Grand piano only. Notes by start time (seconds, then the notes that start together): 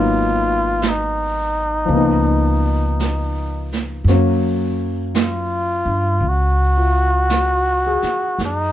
Already playing: F#3 A#3 B3 D#4
1.85 F3 A#3
1.92 B3
1.97 D#4
4.08 F#3 A#3 C#4
6.77 F4
7.32 F#4
7.87 G#4